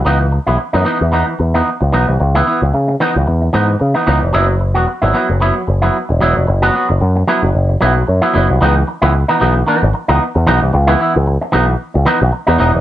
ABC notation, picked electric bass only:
X:1
M:4/4
L:1/16
Q:"Swing 16ths" 1/4=112
K:C#m
V:1 name="Picked electric bass" clef=bass
C,,3 B,,, z F,, z E,,2 z E,,2 z C,, B,,, ^B,,, | C,,2 z C,, C,2 z C,, E,,2 G,,2 C, z C,, ^E,,, | F,,,3 E,,, z G,,, z F,,,2 z F,,,2 z E,,, E,,, ^E,,, | F,,,2 z F,,, F,,2 z F,,, F,,,2 B,,,2 F,, z F,,, ^B,,, |
C,,2 z C,,2 z B,,,2 z G,,, z C,, z E,, B,,, ^B,,, | C,,2 z C,,2 z B,,,2 z C,, z B,,, z E,, E,,, ^E,,, |]